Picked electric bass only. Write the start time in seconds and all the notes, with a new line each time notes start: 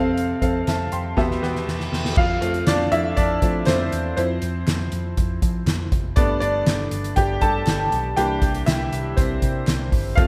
Already playing: F2
0.42 F2
0.68 F2
0.93 F2
1.17 E2
1.42 E2
1.67 E2
1.92 E2
2.17 F2
2.42 F2
2.67 F2
2.92 F2
3.17 F2
3.43 F3
3.67 F2
3.93 E2
4.17 F2
4.42 F2
4.67 F2
4.92 F2
5.17 F2
5.42 F3
5.66 F2
5.92 F1
6.17 G1
6.41 G1
6.66 G1
6.91 G1
7.17 G1
7.42 G2
7.67 G1
7.92 B1
8.17 C2
8.42 C2
8.67 C2
8.92 C2
9.18 C2
9.42 C3
9.68 C2
9.92 G1
10.18 F2